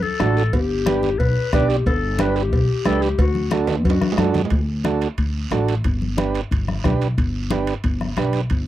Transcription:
0.02 clarinet A4, high conga
0.20 upright bass A1, transistor combo organ D4 F#4 A4, bombo rim, cowbell, high conga, low timbale, short guiro
0.37 short guiro
0.53 upright bass G1, clarinet G4, bombo low, cowbell, high conga, long guiro
0.86 transistor combo organ D4 G4 B4, bombo rim, cowbell, high conga, short guiro
1.03 low conga, short guiro
1.19 upright bass B1, clarinet B4, bombo low, cowbell, high conga, long guiro
1.53 upright bass B1, transistor combo organ D4 G4 D5, clarinet B4, bombo low, bombo rim, cowbell, high conga, low conga, short guiro
1.69 clarinet G4, short guiro
1.86 upright bass G1, clarinet A4, bombo low, cowbell, high conga, long guiro
2.19 transistor combo organ D4 G4 B4, clarinet B4, bombo rim, cowbell, high conga, short guiro
2.36 clarinet G4, short guiro
2.52 upright bass B1, bombo low, cowbell, high conga, long guiro
2.85 upright bass C#2, transistor combo organ D4 G4 B4, clarinet A4, bombo rim, cowbell, high conga, low timbale, short guiro
3.02 clarinet G4, short guiro
3.18 upright bass D2, clarinet F#4, bombo low, cowbell, high conga, long guiro
3.35 high conga
3.51 transistor combo organ D4 F#4 A4, bombo rim, cowbell, high conga, short guiro
3.67 low conga, high timbale, short guiro
3.85 upright bass F#2, clarinet F#4, bombo low, cowbell, high conga, long guiro
3.90 high timbale
4.01 bombo rim, high conga, high timbale
4.12 low timbale
4.17 upright bass F#2, transistor combo organ D4 F#4 A4, bombo rim, cowbell, high conga, short guiro
4.23 low timbale
4.34 low conga, low timbale, short guiro
4.45 low timbale
4.50 upright bass D2, bombo low, high conga, high timbale, long guiro
4.84 transistor combo organ D4 F#4 A4, bombo rim, high conga, high timbale, short guiro
5.01 high timbale, short guiro
5.17 upright bass D2, bombo low, high conga, high timbale, long guiro
5.51 upright bass A1, transistor combo organ D4 F#4 A4, bombo rim, high conga, high timbale, low timbale, short guiro
5.68 high timbale, short guiro
5.84 upright bass G1, bombo low, high conga, high timbale, long guiro
6.02 high conga
6.17 transistor combo organ D4 G4 B4, bombo rim, high conga, high timbale, short guiro
6.34 high timbale, short guiro
6.51 upright bass G1, bombo low, high conga, high timbale, long guiro
6.68 bombo rim, high conga
6.84 upright bass B1, transistor combo organ D4 G4 B4, bombo low, bombo rim, high conga, low conga, high timbale, low timbale, short guiro
7.01 high timbale, short guiro
7.18 upright bass G1, bombo low, high conga, high timbale, long guiro
7.50 transistor combo organ D4 G4 B4, bombo rim, high conga, high timbale, short guiro
7.67 high timbale, short guiro
7.84 upright bass G1, bombo low, high conga, high timbale, long guiro
8.01 bombo rim, high conga
8.16 upright bass B1, transistor combo organ D4 G4 B4, bombo rim, high conga, high timbale, short guiro
8.33 high timbale, short guiro
8.50 upright bass G1, bombo low, high conga, high timbale, long guiro

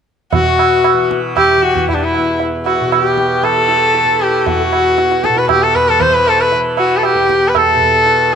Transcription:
0.33 tanpura B2, sarangi F#4, tabla tin, tabla ge
0.46 harmonium F#4
0.59 tabla na
0.84 tabla na
0.94 tanpura E3
1.11 tabla ke
1.37 sarangi G4, tabla na, tabla ge
1.51 harmonium G4
1.57 tanpura E3
1.63 sarangi F#4, tabla te
1.75 tabla ge
1.89 sarangi E4, tabla tin, tabla ge
1.95 sarangi D4
2.02 harmonium E4, sarangi E4
2.15 tanpura E2, harmonium E4, tabla na
2.40 tabla tin
2.66 sarangi F#4, tabla na
2.79 tanpura B2, harmonium F#4
2.92 sarangi G4, tabla na
3.04 harmonium G4
3.17 tabla ke
3.42 tanpura E3, sarangi A4, tabla na
3.56 harmonium A4
3.69 tabla te
3.94 tabla te
4.04 tanpura E3
4.20 sarangi G4, tabla te
4.46 sarangi F#4, tabla tin, tabla ge
4.60 harmonium F#4
4.66 tanpura E2
4.73 tabla na
4.98 tabla te
5.12 tabla te
5.24 sarangi A4, tabla ke
5.29 tanpura B2
5.37 sarangi B4, tabla te
5.49 sarangi G4, tabla na, tabla ge
5.63 harmonium G4, sarangi A4
5.75 sarangi B4, tabla ge
5.89 tanpura E3, sarangi A4, harmonium B4
6.00 sarangi C5, tabla tin, tabla ge
6.14 sarangi B4, harmonium C5
6.27 sarangi A4, tabla na
6.40 harmonium A4, sarangi B4
6.52 tanpura E3, harmonium B4, tabla tin
6.77 sarangi F#4, tabla na
6.92 harmonium F#4
6.97 sarangi A4
7.03 sarangi G4, tabla na
7.11 tanpura E2, harmonium A4
7.18 harmonium G4
7.29 tabla ke
7.49 sarangi B4
7.55 sarangi A4, tabla na, tabla ge
7.69 harmonium A4
7.75 tanpura B2
7.81 tabla ge
8.06 tabla te

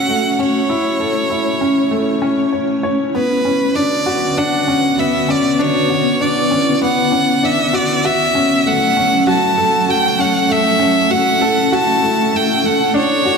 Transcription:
Already playing: upright piano A3 C#4 F#4 A4, ambient pad A3 C#4 F#4 C#5, violin F#5
0.08 upright piano A3
0.39 upright piano C#4, violin C#5
0.69 ambient pad E4, upright piano E4
1.00 upright piano A4
1.30 upright piano E4
1.61 upright piano C#4
1.91 upright piano A3
2.22 upright piano C#4
2.52 upright piano C#5
2.83 upright piano C#5
3.13 ambient pad D3 B3 F#4 B4, upright piano B3, violin B4
3.45 upright piano C#4
3.75 upright piano D4, violin D5
4.06 upright piano F#4
4.37 upright piano D4, violin F#5
4.68 upright piano C#4
4.98 upright piano B3, violin E5
5.29 upright piano C#4, violin D5
5.59 upright piano D4, ambient pad E4, violin C#5
5.90 upright piano F#4
6.20 upright piano D4, violin D5
6.51 upright piano C#4
6.82 upright piano B3, violin F#5
7.12 upright piano C#4
7.43 upright piano D4, violin E5
7.73 upright piano F#4, violin D5
8.03 ambient pad F#3 A3 C#4 A4, upright piano F#4, violin E5
8.35 upright piano C#4
8.66 upright piano A3, violin F#5
8.97 upright piano C#4
9.27 upright piano F#4, violin A5
9.58 upright piano A4
9.88 upright piano F#4, violin G5
10.19 upright piano C#4, violin F#5
10.49 upright piano A3, ambient pad E4, violin E5
10.79 upright piano C#4
11.10 upright piano F#4, violin F#5
11.41 upright piano A4
11.72 upright piano F#4, violin A5
12.02 upright piano A3
12.33 upright piano A3, violin G5
12.64 upright piano A3, violin F#5
12.93 ambient pad D3 B3 F#4, upright piano D4, violin C#5
13.25 upright piano F#4

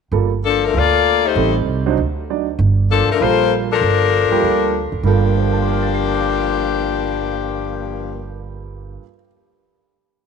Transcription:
0.12 upright bass G1, grand piano G3 A#3 F4 A4
0.45 saxophone section F3 A#3 D4 A4
0.66 saxophone section F3 A3 D4 A#4
0.74 upright bass D2, saxophone section A#3 F4 A4 D5
1.26 saxophone section A3 D#4 G4 C5
1.35 upright bass A1, grand piano G3 C4 D#4 A4
1.66 upright bass C2
1.86 grand piano F#3 D4 D#4 C5
1.97 upright bass D2
2.30 grand piano F#3 D4 D#4 D5
2.59 upright bass G1
2.91 saxophone section F3 A#3 D4 A4
3.08 saxophone section F3 A3 D4 A#4, muted upright bass stroke
3.21 upright bass A#1, grand piano G3 A#3 F4 A4, saxophone section A#3 F4 A4 C5
3.72 saxophone section F3 D4 A4 A#4
3.81 upright bass G1
4.31 grand piano G3 A#3 F4 G4, muted upright bass stroke
4.42 upright bass D2
4.92 upright bass D2
5.03 upright bass G1, grand piano G2 G3 A#3 F4 A4, saxophone section F3 A#3 D4 G4
5.37 grand piano C5
5.44 grand piano F5
5.53 grand piano A5
5.62 grand piano C6
5.71 grand piano F6
5.83 grand piano A6
5.94 grand piano C7

